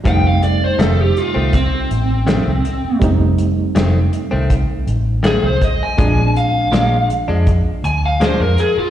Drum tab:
HH |xxxxxxxx|xxxxxxxx|xxxxxxxx|
SD |--o---o-|--o---o-|--o---o-|
BD |o---o---|o---o--o|o---o---|